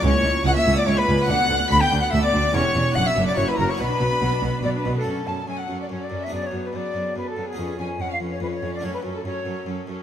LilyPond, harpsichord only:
<<
  \new Staff \with { instrumentName = "Harpsichord" } { \time 3/4 \key b \minor \tempo 4 = 143 <ais e' fis'>2. | <b d' fis'>2. | <b cis' g'>4 <b d' fis'>4 <ais e' fis'>4 | <b d' fis'>2. |
\key fis \minor <a cis' fis'>2. | <b d' gis'>2. | <b cis' gis'>2. | <a cis' fis'>2. | }
  \new Staff \with { instrumentName = "Harpsichord" } { \clef bass \time 3/4 \key b \minor cis,8 cis,8 cis,8 cis,8 cis,8 cis,8 | d,8 d,8 d,8 d,8 d,8 d,8 | e,8 e,8 fis,8 fis,8 fis,8 fis,8 | b,8 b,8 b,8 b,8 b,8 b,8 |
\key fis \minor fis,8 fis,8 fis,8 fis,8 fis,8 fis,8 | fis,8 fis,8 fis,8 fis,8 fis,8 fis,8 | eis,8 eis,8 eis,8 eis,8 eis,8 eis,8 | fis,8 fis,8 fis,8 fis,8 fis,8 fis,8 | }
>>